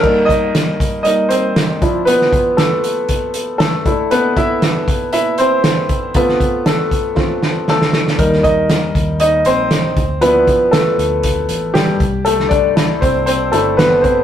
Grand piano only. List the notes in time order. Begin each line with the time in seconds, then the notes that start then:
Already playing: A4
0.00 G3 A#3 D#4 A#4
0.25 D#5
0.29 D#4
1.03 G3 A#3 D#4 D#5
1.29 C4 C5
1.81 F3 D4 E4
2.05 B3 B4
2.57 A3 A4
3.58 A3 A4
3.86 A3 D4 E4
4.11 B3 B4
4.37 E4 E5
5.13 E4 E5
5.38 C4 C5
6.15 A3 B3 C4 F4 B4
6.66 A3 A4
7.15 A3 C4 F4
7.70 A3 A4
8.18 G3 A#3 D#4 A#4
8.43 D#4 D#5
9.20 D#4 D#5
9.46 C4 C5
10.21 F3 B3 D4 E4 B4
10.71 A3 A4
11.74 G3 G4
12.25 A3 A4
12.49 D4 D5
12.75 A3 D4 E4
13.01 C4 C5
13.26 C4 C5
13.52 A3 D4 E4 A4
13.77 B3 B4
14.02 C4 C5